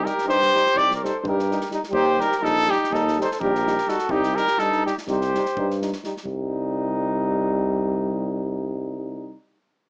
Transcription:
0.02 euphonium G3, trombone D#4, trumpet A#4, snare
0.07 flugelhorn G4
0.18 snare
0.25 tuba G2, euphonium G3, trombone D#4, flugelhorn G4, trumpet C5
0.30 snare
0.42 snare
0.53 euphonium G3, trombone D#4, snare
0.66 snare
0.74 tuba C2, euphonium G3, trombone D#4, trumpet D5, kick
0.78 flugelhorn G4, snare
0.91 flugelhorn A#4, snare
0.96 trumpet D5
1.02 euphonium G3, trombone D#4, flugelhorn A4, trumpet C5, snare
1.19 flugelhorn A4, trumpet C5
1.23 tuba G2, euphonium G3, trombone D#4, kick
1.28 flugelhorn G4, trumpet A#4
1.39 snare
1.50 euphonium G3, trombone D#4, snare
1.61 snare
1.70 euphonium G3, trombone D#4, snare
1.84 snare
1.90 tuba D#2, euphonium G3, trumpet C5, kick
1.94 trombone D#4, flugelhorn G4
2.17 euphonium G3, trumpet A#4, snare
2.22 trombone D#4, flugelhorn G4
2.32 snare
2.37 euphonium G3, flugelhorn G4, trumpet A#4
2.42 tuba A#1, flugelhorn D#4, trombone D#4, trumpet A4, snare
2.67 euphonium G3, trombone D#4, flugelhorn D#4, trumpet G4
2.72 snare
2.84 snare
2.90 tuba D#2, euphonium G3, flugelhorn D#4, trombone D#4, trumpet A4, kick
2.94 snare
3.08 snare
3.18 euphonium G3, trombone D#4, flugelhorn A4, snare
3.22 trumpet C5
3.31 flugelhorn A4, trumpet C5, snare
3.39 tuba A#1, euphonium G3, trombone D#4, flugelhorn G4, trumpet A#4, kick
3.55 snare
3.67 euphonium G3, trombone D#4, snare
3.78 snare
3.87 euphonium G3, trombone D#4, flugelhorn F#4, trumpet A4, snare
3.98 snare
4.09 tuba C2, euphonium G3, trombone D#4, flugelhorn D#4, trumpet G4, kick
4.23 snare
4.35 euphonium G3, trombone D#4, flugelhorn G4, trumpet A#4, snare
4.47 snare
4.58 tuba G2, euphonium G3, flugelhorn D#4, trombone D#4, trumpet A4, snare
4.72 snare
4.84 euphonium G3, trombone D#4, flugelhorn D#4, trumpet G4, snare
4.98 snare
5.07 tuba C2, euphonium G3, trombone D#4, flugelhorn G4, trumpet C5, kick, snare
5.21 snare
5.35 euphonium G3, trombone D#4, snare
5.45 snare
5.57 tuba G2, euphonium G3, trombone D#4, kick
5.70 snare
5.81 euphonium G3, trombone D#4, snare
5.92 snare
6.04 euphonium G3, trombone D#4, snare
6.17 snare
6.25 tuba C2, euphonium G3, trombone D#4, kick

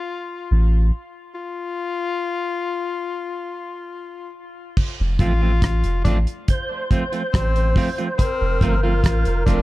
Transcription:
Already playing: tenor saxophone F4
0.51 sub bass A1
1.35 tenor saxophone F4
4.77 kick, crash
5.00 sub bass F1
5.19 sub bass A1, clean electric guitar F3 A3 C4 F4, tenor saxophone F4, kick, closed hi-hat
5.42 clean electric guitar F3 A3 C4 F4
5.62 sub bass A1, kick, cross-stick, closed hi-hat
5.84 sub bass F1, closed hi-hat
6.05 sub bass A1, clean electric guitar F3 A3 C4 F4, tenor saxophone D4, kick, closed hi-hat
6.27 closed hi-hat
6.48 tonewheel organ C5, kick, closed hi-hat
6.91 clean electric guitar F3 A3 C4 F4, kick, closed hi-hat
7.12 clean electric guitar F3 A3 C4 F4, closed hi-hat
7.33 sub bass A1, tenor saxophone C4, kick, cross-stick, closed hi-hat
7.56 closed hi-hat
7.76 clean electric guitar F3 A3 C4 F4, kick, open hi-hat
7.98 clean electric guitar F3 A3 C4 F4, closed hi-hat
8.18 tenor saxophone C4, tonewheel organ A#4, kick, closed hi-hat
8.41 sub bass F1
8.61 sub bass G1, clean electric guitar F3 A3 C4 F4, kick, closed hi-hat
8.83 clean electric guitar F3 A3 C4 F4, tenor saxophone F4
9.04 sub bass A1, kick, cross-stick, closed hi-hat
9.25 sub bass F1, closed hi-hat
9.46 sub bass E1, clean electric guitar F3 A3 C4 F4, tenor saxophone D4, kick, closed hi-hat

